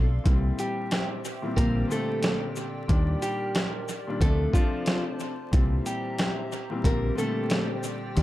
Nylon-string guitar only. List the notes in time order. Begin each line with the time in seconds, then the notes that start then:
0.59 G3 G4
1.56 A#3 A#4
1.92 A3 A4
3.22 G3 G4
4.21 A3 A4
4.53 F3 F4
5.86 G3 G4
6.86 A#3 A#4
7.18 A3 A4